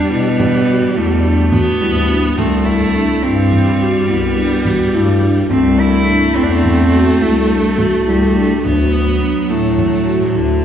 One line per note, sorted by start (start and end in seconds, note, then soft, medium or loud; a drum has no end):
0.00 1.49 G3 medium
0.00 0.11 D4 medium
0.10 0.88 B2 medium
0.10 0.98 B3 loud
0.10 0.45 E4 medium
0.10 frame drum soft
0.40 frame drum medium
0.67 0.84 F#4 medium
0.96 1.73 E2 medium
0.96 1.83 A3 medium
0.96 1.13 E4 medium
1.25 1.42 D4 medium
1.52 2.40 B3 loud
1.52 1.70 F#4 medium
1.52 frame drum medium
1.81 2.33 D2 medium
1.81 2.10 G3 medium
1.81 1.99 E4 medium
1.81 frame drum soft
2.10 2.27 D4 medium
2.10 frame drum soft
2.37 3.15 C2 medium
2.37 3.25 A3 medium
2.37 2.67 C4 medium
2.37 2.72 C4 medium
2.37 frame drum soft
2.65 3.24 E4 medium
2.95 3.12 D4 medium
3.23 4.00 G2 medium
3.23 5.51 G3 medium
3.23 4.08 C4 medium
3.23 3.57 E4 medium
3.23 frame drum soft
3.52 frame drum medium
3.80 3.97 F#4 medium
4.09 4.77 C2 medium
4.09 4.97 B3 medium
4.09 4.26 E4 medium
4.37 4.54 D4 medium
4.65 4.83 F#4 medium
4.65 frame drum medium
4.94 5.45 G2 medium
4.94 5.23 A3 medium
4.94 5.11 E4 medium
4.94 frame drum soft
5.22 5.39 D4 medium
5.22 frame drum soft
5.50 6.28 C2 loud
5.50 8.65 A3 medium
5.50 5.84 C4 medium
5.50 5.81 C4 loud
5.50 frame drum soft
5.80 6.38 E4 loud
6.07 6.24 D4 medium
6.35 7.13 E2 medium
6.35 6.45 C4 loud
6.35 6.69 E4 medium
6.35 frame drum soft
6.43 6.52 D4 medium
6.51 7.23 C4 loud
6.64 frame drum soft
6.93 7.10 F#4 medium
7.21 7.98 C2 medium
7.21 8.09 A3 medium
7.21 7.38 E4 medium
7.50 7.67 D4 medium
7.78 7.95 F#4 medium
7.78 frame drum medium
8.07 8.58 C2 medium
8.07 8.67 G3 medium
8.07 8.24 E4 medium
8.07 frame drum soft
8.35 8.52 D4 medium
8.63 9.41 D2 medium
8.63 10.65 F#3 medium
8.63 9.51 B3 medium
8.63 8.98 D4 medium
8.63 frame drum soft
8.93 frame drum soft
9.21 9.38 D4 medium
9.49 10.26 A2 medium
9.49 10.35 A3 medium
9.49 9.83 E4 medium
9.78 frame drum medium
10.06 10.23 F#4 medium
10.06 frame drum soft
10.34 10.65 D2 medium
10.34 10.65 D3 medium
10.34 10.51 E4 medium